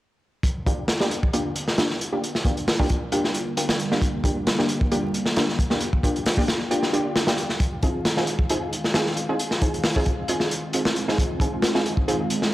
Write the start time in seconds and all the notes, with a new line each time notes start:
0.43 D3 G3 A#3 F4, kick, closed hi-hat
0.66 A#3 D4 F4 G4, kick, closed hi-hat
0.88 snare, closed hi-hat
1.00 A#3 D4 F4 G4, snare
1.11 closed hi-hat
1.23 kick
1.33 A#3 D4 F4 G4, closed hi-hat
1.56 closed hi-hat
1.68 snare
1.78 A#3 D4 F4 G4, snare, closed hi-hat
1.90 snare
2.01 closed hi-hat
2.12 A#3 D4 F4 G4
2.24 closed hi-hat
2.35 snare
2.45 A#3 D4 F4 G4, kick, closed hi-hat
2.57 closed hi-hat
2.68 snare, open hi-hat
2.79 A#3 D4 F4 G4, kick
2.89 kick, closed hi-hat
3.12 A#3 D4 F4 G4, closed hi-hat
3.24 snare
3.34 closed hi-hat
3.57 A#3 D4 F4 G4, closed hi-hat
3.69 snare
3.79 closed hi-hat
3.91 A#3 D4 F4 G4, snare
4.02 kick, closed hi-hat
4.24 A#3 D4 F4 G4, kick, closed hi-hat
4.47 snare, closed hi-hat
4.59 A#3 D4 F4 G4, snare
4.69 closed hi-hat
4.81 kick
4.92 A#3 D4 F4 G4, closed hi-hat
5.14 closed hi-hat
5.26 snare
5.36 A#3 D4 F4 G4, snare, closed hi-hat
5.49 snare
5.59 kick, closed hi-hat
5.70 A#3 D4 F4 G4, snare
5.80 closed hi-hat
5.93 kick
6.03 A#3 D4 F4 G4, kick, closed hi-hat
6.16 closed hi-hat
6.26 snare, open hi-hat
6.37 A#3 D4 F4 G4, kick
6.48 snare, closed hi-hat
6.71 A#3 D4 F4 G4, closed hi-hat
6.83 snare
6.93 A#3 D4 F4 G4, closed hi-hat
7.16 snare, closed hi-hat
7.27 A#3 D4 F4 G4, snare, closed hi-hat
7.38 closed hi-hat
7.49 snare
7.60 D#3 G#3 C4, kick, closed hi-hat
7.83 C4 D#4 F4 G#4, kick, closed hi-hat
8.05 snare, closed hi-hat
8.17 C4 D#4 F4 G#4, snare
8.27 closed hi-hat
8.39 kick
8.49 C4 D#4 F4 G#4, closed hi-hat
8.73 closed hi-hat
8.84 snare
8.94 C4 D#4 F4 G#4, snare, closed hi-hat
9.06 snare
9.17 closed hi-hat
9.29 C4 D#4 F4 G#4
9.39 closed hi-hat
9.51 snare
9.62 C4 D#4 F4 G#4, kick, closed hi-hat
9.74 closed hi-hat
9.84 snare, open hi-hat
9.96 C4 D#4 F4 G#4, kick
10.06 kick, closed hi-hat
10.28 C4 D#4 F4 G#4, closed hi-hat
10.40 snare
10.51 closed hi-hat
10.73 C4 D#4 F4 G#4, closed hi-hat
10.85 snare
10.96 closed hi-hat
11.08 C4 D#4 F4 G#4, snare
11.18 kick, closed hi-hat
11.40 C4 D#4 F4 G#4, kick, closed hi-hat
11.62 snare, closed hi-hat
11.75 C4 D#4 F4 G#4, snare
11.86 closed hi-hat
11.97 kick
12.08 C4 D#4 F4 G#4, closed hi-hat
12.30 closed hi-hat
12.42 snare